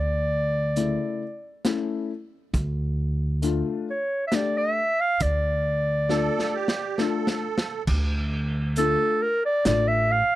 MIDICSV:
0, 0, Header, 1, 6, 480
1, 0, Start_track
1, 0, Key_signature, -1, "minor"
1, 0, Tempo, 887574
1, 1378, Time_signature, 3, 2, 24, 8
1, 5599, End_track
2, 0, Start_track
2, 0, Title_t, "Clarinet"
2, 0, Program_c, 0, 71
2, 0, Note_on_c, 0, 74, 90
2, 880, Note_off_c, 0, 74, 0
2, 2112, Note_on_c, 0, 73, 80
2, 2301, Note_off_c, 0, 73, 0
2, 2312, Note_on_c, 0, 76, 73
2, 2353, Note_on_c, 0, 74, 91
2, 2361, Note_off_c, 0, 76, 0
2, 2475, Note_on_c, 0, 76, 98
2, 2483, Note_off_c, 0, 74, 0
2, 2706, Note_on_c, 0, 77, 117
2, 2714, Note_off_c, 0, 76, 0
2, 2824, Note_on_c, 0, 74, 92
2, 2832, Note_off_c, 0, 77, 0
2, 4025, Note_off_c, 0, 74, 0
2, 4749, Note_on_c, 0, 69, 107
2, 4987, Note_on_c, 0, 70, 99
2, 4995, Note_off_c, 0, 69, 0
2, 5106, Note_off_c, 0, 70, 0
2, 5112, Note_on_c, 0, 74, 101
2, 5221, Note_off_c, 0, 74, 0
2, 5229, Note_on_c, 0, 74, 101
2, 5346, Note_on_c, 0, 76, 97
2, 5354, Note_off_c, 0, 74, 0
2, 5470, Note_on_c, 0, 77, 114
2, 5478, Note_off_c, 0, 76, 0
2, 5599, Note_off_c, 0, 77, 0
2, 5599, End_track
3, 0, Start_track
3, 0, Title_t, "Accordion"
3, 0, Program_c, 1, 21
3, 3296, Note_on_c, 1, 69, 93
3, 3538, Note_on_c, 1, 67, 85
3, 3546, Note_off_c, 1, 69, 0
3, 3771, Note_on_c, 1, 69, 73
3, 3788, Note_off_c, 1, 67, 0
3, 4236, Note_off_c, 1, 69, 0
3, 5599, End_track
4, 0, Start_track
4, 0, Title_t, "Upright piano"
4, 0, Program_c, 2, 0
4, 413, Note_on_c, 2, 49, 54
4, 413, Note_on_c, 2, 57, 60
4, 416, Note_on_c, 2, 64, 75
4, 656, Note_off_c, 2, 49, 0
4, 656, Note_off_c, 2, 57, 0
4, 658, Note_off_c, 2, 64, 0
4, 892, Note_on_c, 2, 57, 77
4, 893, Note_on_c, 2, 61, 77
4, 896, Note_on_c, 2, 64, 82
4, 1135, Note_off_c, 2, 57, 0
4, 1136, Note_off_c, 2, 61, 0
4, 1137, Note_off_c, 2, 64, 0
4, 1851, Note_on_c, 2, 57, 78
4, 1857, Note_on_c, 2, 62, 75
4, 1857, Note_on_c, 2, 65, 86
4, 2095, Note_off_c, 2, 57, 0
4, 2098, Note_off_c, 2, 62, 0
4, 2098, Note_off_c, 2, 65, 0
4, 2338, Note_on_c, 2, 57, 71
4, 2338, Note_on_c, 2, 62, 54
4, 2344, Note_on_c, 2, 67, 70
4, 2578, Note_off_c, 2, 62, 0
4, 2579, Note_off_c, 2, 57, 0
4, 2582, Note_off_c, 2, 67, 0
4, 3291, Note_on_c, 2, 57, 66
4, 3293, Note_on_c, 2, 62, 62
4, 3294, Note_on_c, 2, 65, 67
4, 3537, Note_off_c, 2, 57, 0
4, 3537, Note_off_c, 2, 62, 0
4, 3538, Note_off_c, 2, 65, 0
4, 3781, Note_on_c, 2, 57, 72
4, 3785, Note_on_c, 2, 65, 78
4, 3786, Note_on_c, 2, 62, 66
4, 4023, Note_off_c, 2, 57, 0
4, 4024, Note_off_c, 2, 65, 0
4, 4025, Note_off_c, 2, 62, 0
4, 4746, Note_on_c, 2, 57, 64
4, 4749, Note_on_c, 2, 62, 58
4, 4749, Note_on_c, 2, 65, 71
4, 4986, Note_off_c, 2, 57, 0
4, 4987, Note_off_c, 2, 62, 0
4, 4987, Note_off_c, 2, 65, 0
4, 5225, Note_on_c, 2, 57, 58
4, 5226, Note_on_c, 2, 62, 54
4, 5232, Note_on_c, 2, 65, 66
4, 5465, Note_off_c, 2, 57, 0
4, 5466, Note_off_c, 2, 62, 0
4, 5469, Note_off_c, 2, 65, 0
4, 5599, End_track
5, 0, Start_track
5, 0, Title_t, "Upright bass"
5, 0, Program_c, 3, 32
5, 0, Note_on_c, 3, 38, 82
5, 514, Note_off_c, 3, 38, 0
5, 1371, Note_on_c, 3, 38, 108
5, 1949, Note_off_c, 3, 38, 0
5, 2816, Note_on_c, 3, 38, 91
5, 3395, Note_off_c, 3, 38, 0
5, 4259, Note_on_c, 3, 38, 109
5, 4837, Note_off_c, 3, 38, 0
5, 5223, Note_on_c, 3, 33, 106
5, 5512, Note_off_c, 3, 33, 0
5, 5599, End_track
6, 0, Start_track
6, 0, Title_t, "Drums"
6, 411, Note_on_c, 9, 42, 46
6, 466, Note_off_c, 9, 42, 0
6, 890, Note_on_c, 9, 38, 63
6, 890, Note_on_c, 9, 42, 47
6, 945, Note_off_c, 9, 38, 0
6, 945, Note_off_c, 9, 42, 0
6, 1372, Note_on_c, 9, 42, 48
6, 1373, Note_on_c, 9, 36, 75
6, 1426, Note_off_c, 9, 42, 0
6, 1427, Note_off_c, 9, 36, 0
6, 1851, Note_on_c, 9, 42, 49
6, 1905, Note_off_c, 9, 42, 0
6, 2334, Note_on_c, 9, 38, 60
6, 2334, Note_on_c, 9, 42, 46
6, 2389, Note_off_c, 9, 38, 0
6, 2389, Note_off_c, 9, 42, 0
6, 2813, Note_on_c, 9, 42, 51
6, 2816, Note_on_c, 9, 36, 90
6, 2867, Note_off_c, 9, 42, 0
6, 2870, Note_off_c, 9, 36, 0
6, 3295, Note_on_c, 9, 38, 44
6, 3349, Note_off_c, 9, 38, 0
6, 3456, Note_on_c, 9, 38, 36
6, 3510, Note_off_c, 9, 38, 0
6, 3613, Note_on_c, 9, 38, 64
6, 3667, Note_off_c, 9, 38, 0
6, 3775, Note_on_c, 9, 38, 48
6, 3829, Note_off_c, 9, 38, 0
6, 3932, Note_on_c, 9, 38, 62
6, 3986, Note_off_c, 9, 38, 0
6, 4097, Note_on_c, 9, 38, 76
6, 4151, Note_off_c, 9, 38, 0
6, 4257, Note_on_c, 9, 49, 86
6, 4258, Note_on_c, 9, 36, 99
6, 4311, Note_off_c, 9, 49, 0
6, 4313, Note_off_c, 9, 36, 0
6, 4737, Note_on_c, 9, 42, 45
6, 4791, Note_off_c, 9, 42, 0
6, 5220, Note_on_c, 9, 38, 68
6, 5220, Note_on_c, 9, 42, 56
6, 5274, Note_off_c, 9, 38, 0
6, 5274, Note_off_c, 9, 42, 0
6, 5599, End_track
0, 0, End_of_file